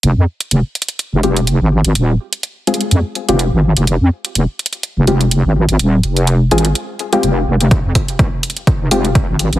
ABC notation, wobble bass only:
X:1
M:4/4
L:1/16
Q:"Swing 16ths" 1/4=125
K:Fm
V:1 name="Wobble bass" clef=bass
F,,, F,, z2 F,,, z4 F,,, F,,,3 A,,,2 A,,, | E,,,2 z6 F,, z2 F,,,2 A,,,2 F,,, | F,,, F,, z2 F,,, z4 F,,, F,,,3 A,,,2 A,,, | E,,,2 F,,,4 A,,,2 z4 F,,,2 F,,,2 |
F,,, F,, z2 F,,, z4 F,,, F,,,3 A,,,2 A,,, |]